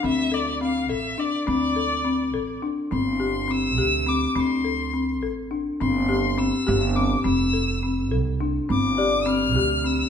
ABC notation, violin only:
X:1
M:5/8
L:1/8
Q:1/4=104
K:Gdor
V:1 name="Violin"
e d f e d | d4 z | c'2 e'2 d' | c'3 z2 |
c'2 e'2 d' | e'3 z2 | d'2 f'2 e' |]